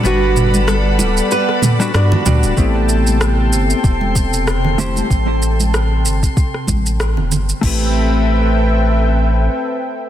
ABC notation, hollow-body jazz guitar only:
X:1
M:4/4
L:1/16
Q:"Swing 16ths" 1/4=95
K:Ador
V:1 name="Hollow-body jazz guitar"
[G,B,DFB]8- [G,B,DFB]3 [G,B,DFB] [G,B,DFd]2 [G,B,DFd]2 | [A,B,CEG]12- [A,B,CEG]2 [A,CEGc]2 | z16 | [A,CEGB]16 |]